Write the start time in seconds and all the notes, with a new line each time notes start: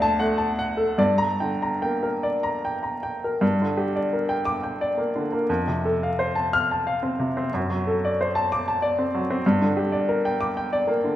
Already playing: D2 D5
0.02 A5
0.19 A3 F#5
0.38 A5
0.59 F#5
0.77 A4
0.98 G2 D5
1.18 A#5
1.40 D3 G5
1.62 A#5
1.82 A#3 G5
2.03 A#4
2.23 D5
2.43 A#5
2.65 G5
2.83 A#5
3.03 G5
3.24 A#4
3.41 G2
3.62 D3
3.77 G4
3.96 D5
4.13 A#4
4.29 G5
4.45 D6
4.63 G5
4.81 D5
4.98 A#3
5.16 D3
5.32 A#3
5.49 F2
5.68 C3
5.85 A4
6.03 F5
6.19 C5
6.35 A5
6.53 F6
6.71 A5
6.87 F5
7.03 C4
7.19 C3
7.37 C4
7.54 F#2
7.70 F#3
7.87 A4
8.05 D5
8.21 C5
8.35 A5
8.52 D6
8.68 A5
8.82 D5
8.98 C4
9.14 F#3
9.30 C4
9.46 G2
9.61 D3
9.77 G4
9.92 D5
10.09 A#4
10.25 G5
10.41 D6
10.57 G5
10.73 D5
10.87 A#3
11.04 D3